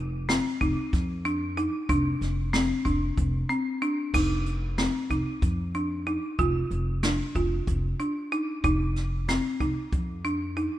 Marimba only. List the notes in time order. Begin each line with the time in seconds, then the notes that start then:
Already playing: D#4
0.29 C4
0.61 D#4
1.25 D4
1.57 D#4
1.89 D4
2.53 C4
2.85 D4
3.49 C4
3.82 D4
4.14 D#4
4.78 C4
5.11 D#4
5.75 D4
6.07 D#4
6.39 F4
7.03 D4
7.36 F4
8.00 D4
8.32 D#4
8.64 D#4
9.29 C4
9.61 D#4
10.25 D4
10.57 D#4